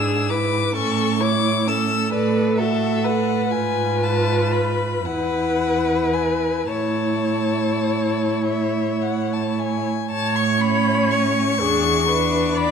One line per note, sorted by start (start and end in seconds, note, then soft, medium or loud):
0.00 0.60 G#2 medium
0.00 0.31 D4 soft
0.00 0.32 G#4 soft
0.00 0.30 E6 medium
0.29 0.75 E4 soft
0.29 0.74 B4 soft
0.29 0.75 D6 medium
0.75 1.98 A2 medium
0.75 1.21 C#4 medium
0.75 1.22 A4 medium
0.75 1.23 C#6 medium
1.20 1.68 E4 soft
1.20 1.69 C#5 soft
1.20 1.69 D6 medium
1.67 2.12 C#4 soft
1.67 2.12 A4 soft
1.67 2.12 E6 medium
2.12 3.37 A2 medium
2.12 2.60 A4 soft
2.12 2.60 B4 soft
2.12 2.58 D5 medium
2.58 3.07 F#4 soft
2.58 3.06 A4 medium
2.58 3.05 E5 medium
3.04 3.53 A4 soft
3.04 3.52 B4 soft
3.04 3.52 F#5 medium
3.50 5.08 F4 medium
3.50 5.01 B4 medium
3.50 4.04 G#5 medium
3.55 5.07 G#2 medium
4.02 4.54 A5 medium
4.52 5.07 B5 medium
5.05 6.72 E2 soft
5.05 6.72 E4 soft
5.05 6.71 B4 medium
5.05 6.14 F#5 medium
6.13 6.71 G#5 medium
6.71 9.86 A2 soft
6.71 9.86 E4 soft
6.71 9.86 C#5 soft
6.71 8.42 A5 medium
8.46 9.03 E5 medium
9.01 9.34 F#5 medium
9.32 9.60 A5 medium
9.59 10.10 G#5 medium
10.10 11.43 A2 medium
10.10 11.62 C#5 medium
10.10 10.37 A5 medium
10.35 10.62 C#6 medium
10.60 11.59 C#4 medium
10.60 11.12 B5 medium
11.10 12.58 C#6 loud
11.60 12.71 E2 medium
11.60 12.09 D4 medium
11.60 12.09 G#4 medium
12.08 12.71 D4 medium
12.08 12.56 B4 medium
12.55 12.71 D5 medium
12.55 12.71 B5 medium